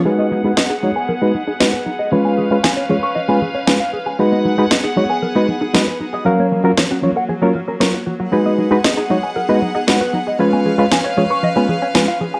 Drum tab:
SD |--o---o-|--o---o-|--o---o-|--o---o-|

SD |--o---o-|--o---o-|